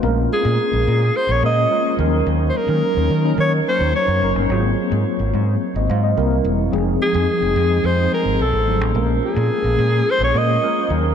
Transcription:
<<
  \new Staff \with { instrumentName = "Alto saxophone" } { \time 4/4 \key bes \minor \tempo 4 = 108 r8 aes'4. c''16 des''16 ees''4 r8 | r16. c''32 bes'4. des''8 c''8 des''8. r16 | r1 | r8 aes'4. c''8 bes'8 a'8. r16 |
r8 aes'4. c''16 des''16 ees''4 r8 | }
  \new Staff \with { instrumentName = "Tine electric piano" } { \time 4/4 \key bes \minor << { r1 | r1 | r2 r16 <c'' ees''>16 f''16 <c'' ees''>8 r8. | r1 |
r1 | } \\ { <aes bes des' f' bes'>4~ <aes bes des' f' bes'>16 r4 r16 <aes bes des' f' bes'>16 r16 <aes bes des' f' bes'>8 <f ges bes des' ees' bes'>8~ | <f ges bes des' ees' bes'>8 r16 <ges bes des' ees' bes'>8. r16 <ges bes des' ees' bes'>8 r16 <ges bes des' ees' bes'>8. r16 <ges bes des' ees' bes'>16 r16 | <ges bes c' f' aes'>4~ <ges bes c' f' aes'>16 r4. r16 <g bes c' e' bes'>8. r16 | <f aes c' ees' aes'>8 r16 <f aes c' ees' aes'>8. r16 <f aes c' ees' aes'>8 r16 <f aes c' ees' aes'>8 r8 <fis a b d' a'>16 r16 |
<aes bes des' f' bes'>4~ <aes bes des' f' bes'>16 r4 r16 <aes bes des' f' bes'>16 r16 <aes bes des' f' bes'>8 <ges bes des' ees' bes'>8 | } >> }
  \new Staff \with { instrumentName = "Fingered electric bass" } { \clef bass \time 4/4 \key bes \minor bes,,8 r16 bes,16 r16 bes,,16 bes,8 r16 bes,,16 bes,8 r8 ees,8 | ees,8 r16 ees16 r16 ees,16 ees8 ees8 r16 ees,16 r16 ges,16 ges,,16 g,,16 | aes,,8 r16 aes,16 r16 aes,,16 aes,8 r16 aes,,16 aes,8 c,8 e,,8 | f,,8 r16 f,16 r16 f,,16 f,8 f,8 r16 aes,,16 b,,16 a,,16 aes,,16 a,,16 |
bes,,8 r16 bes,16 r16 bes,,16 bes,8 r16 bes,,16 bes,8 r8 ees,8 | }
>>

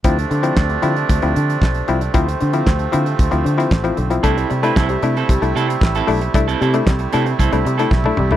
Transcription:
<<
  \new Staff \with { instrumentName = "Clean electric guitar" } { \time 4/4 \key d \dorian \tempo 4 = 114 r1 | r1 | <c' e' a'>8 r16 <c' e' b'>16 <c' e' a'>8 r16 <c' e' a'>16 r8 <c' e' a'>8 r16 <c' e' a'>8 r16 | r16 <c' e' a'>16 <c' e' a'>16 r8. <c' e' a'>8 <c' e' a'>8 r16 <c' e' a'>16 r4 | }
  \new Staff \with { instrumentName = "Clav" } { \time 4/4 \key d \dorian <f c' e'>16 r16 d16 <f c' e'>16 <c' e'>16 d16 <f c' e'>16 r16 d16 <f c' e'>16 <c' e'>16 r8. <f c' e'>16 r16 | <f c' e'>16 r16 d16 <f c' e'>16 d16 r16 <f c' e'>16 <c' e'>16 r16 <f c' e'>16 d16 <f c' e'>16 r16 <f c' e'>16 d16 <f c' e'>16 | <a d' e'>16 r16 <c g>16 <a d' e'>16 r16 <c g>16 <a d' e'>16 r16 <c g>16 <a d' e'>16 <d' e'>16 r8. <a d' e'>16 r16 | <a d' e'>16 r16 <c g>16 <a d' e'>16 <c g>16 r16 <a d' e'>16 <d' e'>16 r16 <a d' e'>16 <c g>16 <a d' e'>16 r16 <a d' e'>16 <c g>16 <a d' e'>16 | }
  \new Staff \with { instrumentName = "Accordion" } { \time 4/4 \key d \dorian d'1 | c'1 | e'1~ | e'1 | }
  \new Staff \with { instrumentName = "Accordion" } { \clef bass \time 4/4 \key d \dorian << { <c a>1~ | <c a>1~ | <c a>1~ | <c a>1 | } \\ { f1~ | f1 | g1~ | g1 | } >> }
  \new Staff \with { instrumentName = "Fingered electric bass" } { \clef bass \time 4/4 \key d \dorian d,8 d8 d,8 d8 d,16 d,16 d8 b,,8 c,8 | d,8 d8 d,8 d8 d,16 d,16 d8 a,,8 b,,8 | c,8 c8 c,8 c8 c,16 c,16 c8 a,,8 b,,8 | c,8 c8 c,8 c8 c,16 c,16 c8 b,,8 c,8 | }
  \new DrumStaff \with { instrumentName = "Drums" } \drummode { \time 4/4 <hh bd>16 hh16 hh16 hh16 <hc bd sn>16 hh16 hh16 hh16 <hh bd>16 hh16 hh16 hh16 <hc bd sn>16 hh16 hh16 hh16 | <hh bd>16 hh16 hh16 hh16 <hc bd sn>16 hh16 hh16 hh16 <hh bd>16 hh16 hh16 hh16 <hc bd sn>16 hh16 hh16 hh16 | <hh bd>16 hh16 hh16 hh16 <hc bd sn>16 hh16 hh16 hh16 <hh bd>16 hh16 hh16 hh16 <hc bd sn>16 hh16 hho16 hh16 | <hh bd>16 hh16 hh16 hh16 <hc bd sn>16 hh16 hh16 hh16 <hh bd>16 hh16 hh16 hh16 <bd sn>16 tommh16 toml16 tomfh16 | }
>>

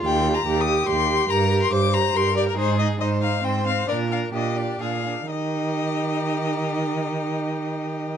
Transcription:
<<
  \new Staff \with { instrumentName = "Violin" } { \time 3/4 \key ees \major \tempo 4 = 134 \tuplet 3/2 { g''4 bes''8~ bes''8 ees'''4 } c'''4 | bes''8. c'''16 d'''8 bes''8 c'''8 d''16 bes'16 | c''8 ees''8 ees''8 f''8 g''8 f''8 | d''8 f''8 ees''8 d''8 f''4 |
ees''2.~ | ees''2. | }
  \new Staff \with { instrumentName = "Violin" } { \time 3/4 \key ees \major f'4 g'2 | bes'4 c''4 bes'4 | aes'4 c''4 c''4 | bes'4 g'4 aes'8 r8 |
g'2.~ | g'2. | }
  \new Staff \with { instrumentName = "Viola" } { \time 3/4 \key ees \major g'8 g'8 g'8 g'8 g'8 g'8 | g'8 g'8 g'8 g'8 g'8 g'8 | ees'8 ees'8 ees'8 ees'8 c'8 c'8 | d'8 d'8 d'8 d'8 d'8 d'8 |
ees'2.~ | ees'2. | }
  \new Staff \with { instrumentName = "Cello" } { \clef bass \time 3/4 \key ees \major ees,4 ees,4 ees,4 | g,4 g,4 g,4 | aes,4 aes,4 aes,4 | bes,4 bes,4 bes,4 |
ees2.~ | ees2. | }
>>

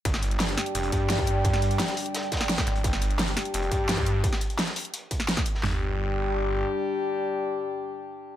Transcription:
<<
  \new Staff \with { instrumentName = "Analog synth pad" } { \time 4/4 \key c \minor \tempo 4 = 172 <g d' d'' g''>1~ | <g d' d'' g''>1~ | <g d' d'' g''>1 | r1 |
<g d' d'' g''>1~ | <g d' d'' g''>1 | }
  \new Staff \with { instrumentName = "Brass ensemble" } { \time 4/4 \key c \minor r4 r16 <g d' g'>16 <g d' g'>2~ <g d' g'>8~ | <g d' g'>4~ <g d' g'>16 <g d' g'>16 <g d' g'>16 r2 r16 | r4 r16 <g d' g'>16 <g d' g'>2~ <g d' g'>8~ | <g d' g'>8 r2. r8 |
<g d' g'>1~ | <g d' g'>1 | }
  \new Staff \with { instrumentName = "Detuned saw bass" } { \clef bass \time 4/4 \key c \minor g,,4. r8 f,,8 g,4.~ | g,4 r2 r8 aes,,8 | g,,4. r8 f,,8 g,4. | r1 |
g,,2. r4 | r1 | }
  \new DrumStaff \with { instrumentName = "Drums" } \drummode { \time 4/4 <hh bd>16 sn16 hh16 hh16 <hh sn>16 hh16 <hh sn>16 hh16 hh16 hh16 <hh bd>8 <hh hho sn>16 bd16 hh8 | <hh bd>16 sn16 hh16 hh16 <hh sn>16 <hh sn>16 <hh hho>16 hh16 <hh sn>16 hh16 <hh bd sn>32 <hh sn>32 <hh sn>16 <hh sn>16 <hh bd sn>16 <hh sn>16 hh16 | <hh bd>16 sn16 hh16 hh16 <hh sn>16 hh16 <hh sn>16 hh16 hh16 hh16 <hh bd>8 <hh hho sn>16 bd16 hh8 | <hh bd>16 sn16 hh16 hh16 <hh sn>16 <hh sn>16 <hh hho>16 hh16 hh8 <hh bd>16 sn16 <hh sn>16 <hh bd sn>16 hh16 sn16 |
<sn tomfh>4 r4 r4 r4 | r4 r4 r4 r4 | }
>>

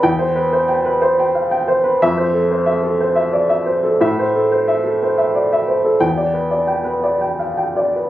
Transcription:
<<
  \new Staff \with { instrumentName = "Upright piano" } { \time 3/4 \key c \major \tempo 4 = 90 << { g''8 r2 r8 | e''8 r2 r8 | e''8 r2 r8 | g''8 r2 r8 | } \\ { r16 c''16 b'16 c''16 g''16 b'16 c''16 g''16 f''16 g''16 c''16 b'16 | r16 c''16 a'16 c''16 e''16 a'16 c''16 e''16 d''16 e''16 c''16 a'16 | r16 c''16 a'16 c''16 e''16 a'16 c''16 e''16 d''16 e''16 c''16 a'16 | r16 d''16 b'16 d''16 g''16 b'16 d''16 g''16 f''16 g''16 d''16 b'16 | } >> }
  \new Staff \with { instrumentName = "Upright piano" } { \clef bass \time 3/4 \key c \major e,2. | f,2. | a,2. | e,2. | }
>>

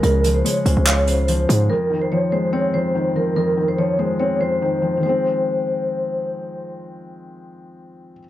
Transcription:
<<
  \new Staff \with { instrumentName = "Vibraphone" } { \time 4/4 \key f \minor \tempo 4 = 144 bes'8. c''16 des''8 c''8 des''8 c''4. | bes'8. c''16 des''8 c''8 des''8 c''4 bes'8 | bes'8. c''16 des''8 c''8 des''8 c''4. | c''2. r4 |
r1 | }
  \new Staff \with { instrumentName = "Felt piano" } { \clef bass \time 4/4 \key f \minor <des f aes f''>8 f8 aes8 des'8 f''8 des8 f8 aes8 | f,8 ees8 f8 aes8 c'8 f,8 ees8 f8 | f,8 ees8 f8 aes8 c'8 f,8 ees8 f8 | <ees f aes c'>1~ |
<ees f aes c'>1 | }
  \new Staff \with { instrumentName = "808-style bass" } { \clef bass \time 4/4 \key f \minor des,4 r8 des,16 des,4.~ des,16 aes,8 | r1 | r1 | r1 |
r1 | }
  \new DrumStaff \with { instrumentName = "Drums" } \drummode { \time 4/4 hh8 hh8 hh8 hh8 <hc hh>8 hh8 hh8 hh8 | r4 r4 r4 r4 | r4 r4 r4 r4 | r4 r4 r4 r4 |
r4 r4 r4 r4 | }
>>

